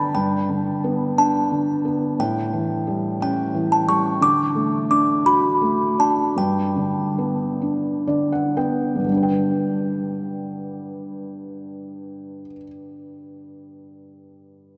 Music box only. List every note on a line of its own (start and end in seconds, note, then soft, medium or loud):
0.00 0.16 B5 medium
0.15 1.21 G5 medium
1.18 2.23 A5 medium
2.20 3.21 G5 medium
3.22 3.74 G5 medium
3.72 3.80 A5 medium
3.89 4.23 C#6 medium
4.22 4.90 D6 medium
4.91 5.27 D6 medium
5.26 6.01 B5 medium
6.00 6.17 A5 medium
6.38 8.05 G5 medium